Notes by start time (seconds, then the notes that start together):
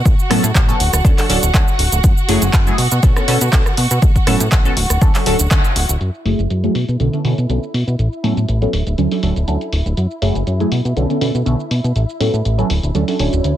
Already playing: F#4 F#5
0.06 A1, kick, closed hi-hat, shaker
0.19 shaker
0.30 A2 F#3 B3 C#4 A4, cross-stick, open hi-hat
0.44 A2, closed hi-hat, shaker
0.55 A1, kick, clap, closed hi-hat, shaker
0.68 F#3 B3 C#4 A4, closed hi-hat, shaker
0.80 D1, open hi-hat
0.93 D1, cross-stick, closed hi-hat, shaker
1.04 D2 F#3 C#4 D4 A4, kick, closed hi-hat, shaker
1.18 F#3 C#4 D4 A4, clap, open hi-hat, shaker
1.29 D1 F#3 C#4 D4 A4, open hi-hat
1.43 D1, closed hi-hat, shaker
1.54 D2 F#3 C#4 D4 A4, kick, clap, closed hi-hat, shaker
1.68 shaker
1.79 D1, open hi-hat
1.92 D1, closed hi-hat, shaker
2.04 F#2, kick, closed hi-hat, shaker
2.17 shaker
2.28 F#1 F#3 A3 E4 G#4, open hi-hat
2.42 F#1, closed hi-hat, shaker
2.53 F#2, kick, clap, closed hi-hat, shaker
2.67 F#3 A3 E4 G#4, closed hi-hat, shaker
2.78 B2, open hi-hat
2.92 B2, closed hi-hat, shaker
3.03 B1 D3 B3 C#4 A4, kick, closed hi-hat, shaker
3.16 D3 B3 C#4 A4, cross-stick, shaker
3.28 B2 D3 B3 C#4 A4, open hi-hat
3.41 B2, closed hi-hat, shaker
3.52 B1 D3 B3 C#4 A4, kick, clap, closed hi-hat, shaker
3.66 cross-stick, shaker
3.77 B2, open hi-hat
3.91 B2, closed hi-hat, shaker
4.02 A1, kick, closed hi-hat, shaker
4.16 kick, closed hi-hat, shaker
4.27 A2 F#3 B3 C#4 A4, cross-stick, open hi-hat
4.40 A2, closed hi-hat, shaker
4.52 A1, kick, clap, closed hi-hat, shaker
4.65 F#3 B3 C#4 A4, closed hi-hat, shaker
4.77 D1, open hi-hat
4.90 D1, cross-stick, closed hi-hat, shaker
5.01 D2 F#3 C#4 D4 A4, kick, closed hi-hat, shaker
5.15 F#3 C#4 D4 A4, clap, open hi-hat, shaker
5.26 D1 F#3 C#4 D4 A4, open hi-hat
5.39 D1, closed hi-hat, shaker
5.51 D2 F#3 C#4 D4 A4, kick, clap, closed hi-hat, shaker
5.64 closed hi-hat, shaker
5.76 D1, open hi-hat
5.89 D1, closed hi-hat, shaker
6.01 F#2 E4 E5, closed hi-hat, shaker
6.14 shaker
6.25 F#1 F#3 A3 E4 G#4, open hi-hat
6.39 F#1, closed hi-hat, shaker
6.50 F#2, closed hi-hat, shaker
6.64 F#3 A3 E4 G#4, closed hi-hat, shaker
6.75 B2, open hi-hat
6.88 B2, closed hi-hat, shaker
7.00 B1 D3 B3 C#4 A4, closed hi-hat, shaker
7.13 D3 B3 C#4 A4, closed hi-hat, shaker
7.24 B2 D3 B3 C#4 A4, open hi-hat
7.38 B2, closed hi-hat, shaker
7.49 B1 D3 B3 C#4 A4, closed hi-hat, shaker
7.63 shaker
7.74 B2, open hi-hat
7.87 B2, closed hi-hat, shaker
7.99 A1, closed hi-hat, shaker
8.13 shaker
8.23 A2 F#3 B3 C#4 A4, open hi-hat
8.37 A2, closed hi-hat, shaker
8.49 A1, closed hi-hat, shaker
8.62 F#3 B3 C#4 A4, closed hi-hat, shaker
8.73 D1, open hi-hat
8.87 D1, closed hi-hat, shaker
8.98 D2 F#3 C#4 D4 A4, closed hi-hat, shaker
9.11 F#3 C#4 D4 A4, open hi-hat, shaker
9.23 D1 F#3 C#4 D4 A4, open hi-hat
9.36 D1, closed hi-hat, shaker
9.47 D2 F#3 C#4 D4 A4, closed hi-hat, shaker
9.61 closed hi-hat, shaker
9.72 D1, open hi-hat
9.86 D1, closed hi-hat, shaker
9.97 F#2, closed hi-hat, shaker
10.11 shaker
10.22 F#1 F#3 A3 E4 G#4, open hi-hat
10.35 F#1, closed hi-hat, shaker
10.47 F#2, closed hi-hat, shaker
10.60 F#3 A3 E4 G#4, closed hi-hat, shaker
10.72 B2, open hi-hat
10.85 B2, closed hi-hat, shaker
10.96 B1 D3 B3 C#4 A4, closed hi-hat, shaker
11.10 D3 B3 C#4 A4, closed hi-hat, shaker
11.21 B2 D3 B3 C#4 A4, open hi-hat
11.35 B2, closed hi-hat, shaker
11.46 B1 D3 B3 C#4 A4, closed hi-hat, shaker
11.60 shaker
11.71 B2, open hi-hat
11.84 B2, closed hi-hat, shaker
11.96 A1, closed hi-hat, shaker
12.09 shaker
12.20 A2 F#3 B3 C#4 A4, open hi-hat
12.34 A2, closed hi-hat, shaker
12.45 A1, closed hi-hat, shaker
12.58 F#3 B3 C#4 A4, closed hi-hat, shaker
12.70 D1, open hi-hat
12.83 D1, closed hi-hat, shaker
12.94 D2 F#3 C#4 D4 A4, closed hi-hat, shaker
13.08 F#3 C#4 D4 A4, open hi-hat, shaker
13.19 D1 F#3 C#4 D4 C#5, open hi-hat
13.33 D1, closed hi-hat, shaker
13.44 D2, closed hi-hat, shaker